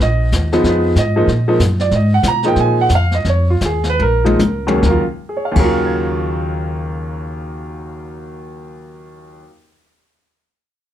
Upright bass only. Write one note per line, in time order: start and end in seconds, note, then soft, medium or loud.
0.00 0.31 A#1 medium
0.32 0.63 D#2 medium
0.64 0.95 F2 medium
0.96 1.27 G#2 medium
1.27 1.58 A#2 medium
1.59 1.90 F#2 medium
1.91 2.22 G#2 medium
2.23 2.55 B2 medium
2.56 2.88 A#2 medium
2.90 3.23 F2 medium
3.25 3.60 F2 medium
3.61 3.98 D#2 medium
3.99 4.38 A#1 medium
4.40 4.82 C#2 medium
4.83 4.99 D#2 medium
5.56 9.41 D#2 medium